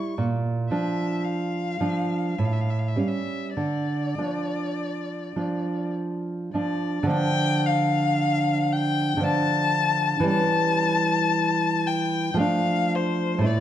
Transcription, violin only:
0.00 0.17 C#6 medium
0.70 1.26 E5 medium
1.25 2.40 F5 medium
2.38 2.47 E5 medium
2.45 2.54 F5 medium
2.53 2.63 E5 medium
2.61 2.72 F5 medium
2.70 2.80 E5 medium
2.79 2.90 F5 soft
2.88 3.01 E5 medium
2.99 3.09 F5 soft
3.07 3.54 E5 medium
3.55 5.90 D5 medium
6.54 7.08 D5 medium
7.11 7.67 G5 loud
7.65 8.74 F5 loud
8.72 9.26 G5 loud
9.24 10.28 A5 loud
10.29 11.88 A5 loud
11.87 12.40 G5 loud
12.41 12.97 F5 loud
12.95 13.47 C5 medium
13.46 13.60 D5 medium

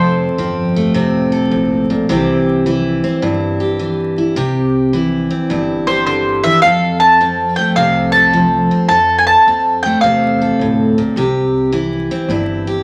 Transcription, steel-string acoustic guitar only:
0.00 1.51 F2 medium
0.00 0.39 C4 medium
0.00 1.31 A4 medium
0.38 2.07 F3 medium
0.38 0.95 C4 medium
0.76 2.07 A3 medium
0.94 1.89 C3 medium
0.94 2.10 C4 medium
1.32 2.06 A4 medium
1.51 1.89 A2 medium
1.90 2.09 A#2 medium
2.09 2.66 C3 medium
2.09 2.65 E3 medium
2.09 3.03 C4 medium
2.09 2.66 E4 medium
2.09 3.59 G4 medium
2.66 3.78 E3 medium
2.66 3.22 E4 medium
3.04 5.30 C4 medium
3.22 4.34 G2 medium
3.22 4.17 E4 soft
3.60 4.34 G4 medium
3.79 4.34 E3 medium
4.18 4.34 E4 soft
4.36 4.93 C3 medium
4.36 5.86 G4 medium
4.93 6.43 E3 medium
4.93 5.50 E4 soft
5.31 7.22 C4 medium
5.50 6.61 G2 medium
5.50 6.62 E4 medium
5.87 6.61 G4 medium
6.07 6.44 D3 medium
6.45 6.64 E3 medium
6.63 8.90 F2 medium
6.63 8.14 A4 medium
7.21 8.32 F3 medium
7.21 7.77 C4 medium
7.59 8.88 A3 medium
7.77 8.34 C3 medium
7.77 8.71 C4 medium
8.15 8.88 A4 medium
8.33 8.88 F3 medium
8.71 9.47 C4 soft
8.91 10.40 A4 medium
9.48 10.04 C4 medium
9.86 11.15 A3 medium
10.04 10.97 C3 medium
10.04 11.73 C4 medium
10.42 11.15 A4 medium
10.61 10.98 A2 medium
10.98 11.17 A#2 medium
11.17 11.73 C3 medium
11.17 12.66 G4 medium
11.72 12.83 E3 medium
11.72 12.29 E4 soft
12.11 12.83 C4 medium
12.30 12.83 G2 medium
12.30 12.83 E4 medium
12.67 12.83 G4 medium

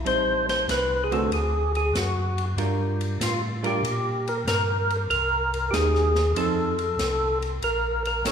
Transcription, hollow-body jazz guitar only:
0.05 1.03 G3 soft
0.05 1.03 C4 medium
0.05 1.03 D#4 medium
1.11 1.30 D3 medium
1.11 1.30 A3 medium
1.11 1.30 C4 medium
1.11 1.30 F#4 medium
2.57 3.55 G3 soft
2.57 3.55 D4 soft
2.57 3.55 F4 soft
2.57 3.55 A#4 medium
3.63 3.81 G3 medium
3.63 3.82 D4 medium
3.63 3.82 F4 medium
3.63 3.82 A#4 medium
5.73 6.12 A#3 soft
5.73 6.12 D#4 soft
5.73 6.12 G4 medium
6.36 6.75 F3 medium
6.36 6.75 C4 medium
6.36 6.75 D#4 medium
6.36 6.75 A4 medium
8.25 8.32 B3 soft
8.25 8.32 D#4 soft
8.25 8.32 A#4 medium
8.25 8.32 C#5 medium

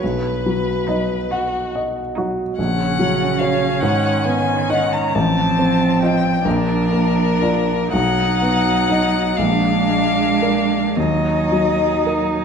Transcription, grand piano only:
0.04 2.54 B1 soft
0.46 1.14 F#3 soft
0.89 1.57 D#5 soft
1.32 2.00 F#5 soft
1.75 2.42 D#5 soft
2.18 2.58 F#4 soft
2.58 3.77 A#1 soft
2.99 3.64 F#3 soft
3.40 3.78 F#4 soft
3.40 3.78 C#5 soft
3.82 5.12 G#2 soft
4.25 4.98 B3 soft
4.70 5.11 D#4 soft
4.70 5.12 D#5 soft
5.15 6.42 A1 soft
5.59 6.28 C4 soft
6.03 6.42 F4 soft
6.03 6.42 D#5 soft
6.45 7.89 A#1 soft
6.93 7.73 A#3 soft
7.42 7.89 F4 soft
7.42 7.89 D5 soft
7.93 9.34 B1 soft
8.42 9.18 B3 soft
8.90 9.34 D#4 soft
8.90 9.34 D#5 soft
9.39 10.93 A#1 soft
9.89 10.74 G#3 soft
10.42 10.92 D4 soft
10.42 10.93 A#4 soft
10.97 12.45 D#2 soft
11.52 12.38 F#3 soft
12.06 12.45 A#4 soft

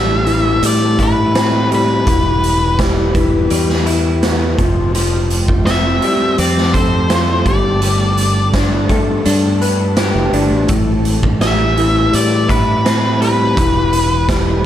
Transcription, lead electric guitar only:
0.00 0.65 E5 medium
0.66 1.02 D5 medium
1.03 1.69 B4 medium
1.75 2.77 B4 medium
5.66 6.34 E5 loud
6.39 6.72 D5 medium
6.74 7.46 C5 medium
7.47 8.50 D5 medium
11.41 12.16 E5 medium
12.15 12.49 D5 medium
12.50 13.21 B4 medium
13.22 14.25 B4 medium

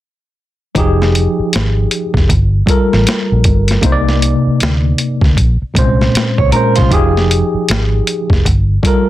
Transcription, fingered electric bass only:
0.76 1.26 F1 loud
1.39 muted fingered electric bass stroke soft
1.55 1.85 G#1 medium
2.15 2.27 F1 medium
2.30 2.61 G1 medium
2.93 3.04 A1 medium
3.32 3.43 A#1 medium
3.46 3.76 G1 medium
3.84 4.33 C2 medium
4.47 muted fingered electric bass stroke soft
4.62 4.92 D2 medium
5.22 5.34 D2 medium
5.38 5.56 A#1 medium
5.62 muted fingered electric bass stroke soft
5.76 6.07 C2 medium
6.15 muted fingered electric bass stroke soft
6.39 6.51 C#2 medium
6.79 6.90 C2 medium
6.92 7.41 F1 medium
7.54 muted fingered electric bass stroke soft
7.70 8.00 G#1 medium
8.31 8.42 F1 medium
8.46 8.77 G1 loud

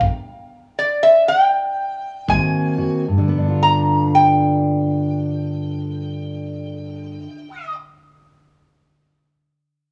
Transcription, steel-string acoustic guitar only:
0.00 0.63 G2 medium
2.28 3.02 G#2 medium
2.28 3.04 D#3 medium
2.28 3.05 A#3 medium
2.28 3.05 C4 medium
2.28 2.77 F#4 medium
2.78 3.04 F#4 medium
3.08 7.16 G2 medium
3.18 7.26 D3 medium
3.28 7.36 B3 medium
3.38 7.46 D4 medium
3.48 7.56 F4 medium

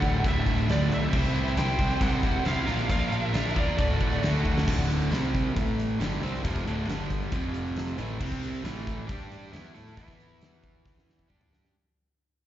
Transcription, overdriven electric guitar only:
0.00 0.22 D2 medium
0.00 0.25 D3 medium
0.00 0.25 G3 medium
0.04 0.23 A2 medium
0.23 0.66 D2 medium
0.23 0.46 A2 medium
0.23 0.44 D3 loud
0.23 0.43 G3 loud
0.44 0.67 A2 medium
0.44 0.68 D3 medium
0.44 0.69 G3 medium
0.67 1.10 D2 medium
0.67 1.10 A2 medium
0.67 1.11 D3 medium
0.67 1.10 G3 loud
1.10 1.56 C3 loud
1.10 1.56 G3 loud
1.10 1.35 C4 loud
1.10 1.34 E4 loud
1.10 1.34 G4 loud
1.10 1.32 C5 loud
1.34 1.54 C4 medium
1.34 1.55 E4 medium
1.34 1.56 G4 medium
1.34 1.57 C5 medium
1.55 1.80 C4 medium
1.55 1.79 E4 medium
1.55 1.78 G4 medium
1.55 1.77 C5 medium
1.78 2.01 C4 medium
1.78 2.01 E4 medium
1.78 2.02 G4 medium
1.78 2.02 C5 medium
2.00 2.45 C3 loud
2.00 2.45 G3 loud
2.00 2.24 C4 loud
2.00 2.24 E4 loud
2.00 2.22 G4 loud
2.00 2.21 C5 loud
2.22 2.43 C4 medium
2.22 2.44 E4 medium
2.22 2.45 G4 medium
2.22 2.46 C5 medium
2.44 2.65 C4 medium
2.44 2.66 E4 medium
2.44 2.66 G4 loud
2.44 2.65 C5 medium
2.66 2.88 A#2 medium
2.66 2.88 F3 medium
2.66 2.89 A#3 medium
2.66 2.90 D4 medium
2.66 2.90 F4 medium
2.66 2.91 A#4 medium
2.89 3.34 A#2 loud
2.89 3.34 F3 loud
2.89 3.13 A#3 medium
2.89 3.12 D4 loud
2.89 3.11 F4 loud
2.89 3.10 A#4 loud
3.11 3.31 A#3 medium
3.11 3.33 D4 medium
3.11 3.33 F4 medium
3.11 3.35 A#4 medium
3.32 3.56 A#3 medium
3.32 3.55 D4 medium
3.32 3.54 F4 medium
3.32 3.53 A#4 medium
3.54 3.77 A#3 medium
3.54 3.77 D4 medium
3.54 3.77 F4 medium
3.54 3.76 A#4 medium
3.77 4.22 D2 loud
3.77 4.21 A2 loud
3.77 4.02 D3 loud
3.77 4.01 A3 loud
3.77 3.99 F#4 loud
4.00 4.23 D3 medium
4.00 4.24 A3 medium
4.00 4.25 F#4 medium
4.23 4.65 A2 medium
4.23 4.66 D3 medium
4.23 4.67 A3 medium
4.23 4.67 F#4 medium
4.68 5.11 D2 loud
4.68 5.11 A2 loud
4.68 5.11 D3 loud
5.12 5.55 C3 medium
5.12 5.56 G3 medium
5.12 5.57 C4 medium
5.55 5.99 A2 loud
5.55 5.99 E3 medium
5.55 6.00 A3 loud
6.00 6.21 G2 loud
6.00 6.21 D3 loud
6.00 6.22 G3 loud
6.22 6.42 C3 medium
6.22 6.43 G3 medium
6.22 6.44 C4 loud
6.43 6.65 F2 loud
6.43 6.65 C3 loud
6.43 6.65 F3 loud
6.66 6.87 D2 medium
6.66 6.87 A2 loud
6.66 6.88 D3 loud
6.88 7.31 G2 medium
6.88 7.32 D3 loud
6.88 7.32 G3 loud
7.32 7.96 F2 loud
7.32 7.97 C3 loud
7.32 7.98 F3 loud
7.97 8.19 A2 medium
7.97 8.19 E3 loud
7.97 8.19 A3 loud
8.19 8.63 C3 medium
8.19 8.64 G3 loud
8.19 8.64 C4 loud
8.64 9.08 A2 medium
8.64 9.08 E3 loud
8.64 9.06 A3 loud
9.07 9.51 G3 loud
9.07 9.52 D4 loud
9.07 9.52 G4 loud
9.52 9.74 E3 medium
9.52 9.74 B3 loud
9.52 9.74 E4 loud
9.74 9.98 A3 medium
9.74 9.96 E4 medium
9.74 9.96 A4 medium
9.97 11.29 E3 loud
9.97 11.29 B3 medium
9.97 11.29 E4 loud
11.29 11.73 G3 loud
11.29 11.74 D4 loud
11.29 11.74 G4 loud

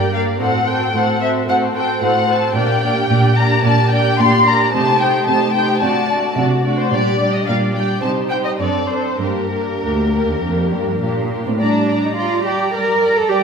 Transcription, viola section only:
0.00 0.12 A#3 soft
0.00 0.12 G4 soft
0.13 0.40 A#3 soft
0.13 0.40 G4 soft
0.39 0.65 C4 soft
0.39 0.65 F#4 soft
0.66 0.93 C4 soft
0.66 0.92 F#4 soft
0.94 1.19 C4 soft
0.94 1.19 F#4 soft
1.20 1.47 C4 soft
1.20 1.46 F#4 soft
1.47 1.74 C4 soft
1.47 1.74 F#4 soft
1.75 2.00 C4 soft
1.75 2.00 F#4 soft
2.01 2.28 C4 soft
2.01 2.27 F#4 soft
2.29 2.55 C4 soft
2.29 2.55 F#4 soft
2.56 2.83 A#3 soft
2.56 2.82 D4 soft
2.84 3.10 A#3 soft
2.84 3.09 D4 soft
3.11 3.36 A#3 soft
3.11 3.37 D4 soft
3.38 3.64 A#3 soft
3.38 3.64 D4 soft
3.65 3.91 A#3 soft
3.65 3.92 D4 soft
3.93 4.19 A#3 soft
3.93 4.19 D4 soft
4.20 4.46 A#3 soft
4.20 4.46 D4 soft
4.47 4.73 A#3 soft
4.47 4.73 D4 soft
4.75 5.01 A3 soft
4.75 5.01 D#4 soft
5.02 5.28 A3 soft
5.02 5.28 D#4 soft
5.29 5.54 A3 soft
5.29 5.54 D#4 soft
5.55 5.81 A3 soft
5.55 5.82 D#4 soft
5.82 6.09 A3 soft
5.82 6.09 D4 soft
6.10 6.37 A3 soft
6.10 6.37 D4 soft
6.38 6.64 A3 soft
6.38 6.64 D4 soft
6.65 6.91 A3 soft
6.65 6.91 D4 soft
6.92 7.19 G3 soft
6.92 7.19 D4 soft
7.20 7.46 G3 soft
7.20 7.46 D4 soft
7.47 7.74 G3 soft
7.47 7.74 D4 soft
7.75 8.01 G3 soft
7.75 8.02 D4 soft
8.03 8.30 G3 soft
8.03 8.30 D#4 soft
8.31 8.60 G3 soft
8.31 8.59 D#4 soft
8.60 8.88 C4 soft
8.60 8.88 D4 soft
8.89 9.19 C4 soft
8.89 9.19 D4 soft
9.20 9.50 A#3 soft
9.20 9.50 D4 soft
9.51 9.81 A#3 soft
9.51 9.80 D4 soft
9.82 10.11 A#3 soft
9.82 10.11 D4 soft
10.12 10.41 A#3 soft
10.12 10.41 D4 soft
10.42 10.70 A#3 soft
10.42 10.70 D4 soft
10.71 11.00 A#3 soft
10.71 11.00 D4 soft
11.01 11.30 A#3 soft
11.01 11.30 D4 soft
11.31 11.60 A#3 soft
11.31 11.61 D4 soft
11.61 12.11 G3 soft
12.18 12.68 G3 soft
12.75 13.24 G3 soft
13.30 13.43 G3 soft

